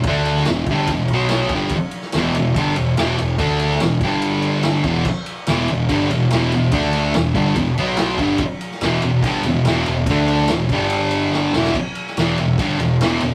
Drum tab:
CC |----------------|----------------|----------------|x---------------|
RD |x-x-x-x-x-x-x-x-|x-x-x-x-x-x-x-x-|x-x-x-x-x-x-x-x-|--x-x-x-x-x-x-x-|
SD |---oo-------o---|---oo-------o---|---oo-------o---|----o-------o---|
BD |o-----o-o-----o-|o-------o-------|o-----o-------o-|o-------o-------|

CC |----------------|----------------|----------------|x---------------|
RD |x-x-x-x-x-x-x-x-|x-x-x-x-x-x-x-x-|x-x-x-x-x-x-----|--x-x-x-x-x-x-x-|
SD |----o-------o---|---oo-------o---|---oo-------o-oo|---oo-------o---|
BD |o-----o-o-----o-|o-------o-------|o-----o---------|o-------o-------|